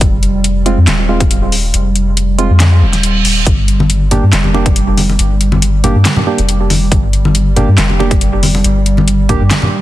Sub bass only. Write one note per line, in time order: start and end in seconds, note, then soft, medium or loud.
0.01 0.76 F1 loud
0.77 0.87 F2 medium
0.88 1.73 D#1 medium
1.74 2.48 F1 loud
2.50 2.83 F2 medium
2.82 3.24 D#1 loud
3.25 3.45 D#1 medium
3.47 4.21 G1 loud
4.23 4.32 G2 loud
4.33 5.18 F1 medium
5.19 5.94 G1 loud
5.95 6.05 G2 medium
6.38 6.90 F1 loud
6.92 7.66 G1 loud
7.68 7.77 G2 medium
7.78 8.63 F1 medium
8.64 9.39 G1 loud
9.41 9.50 G2 medium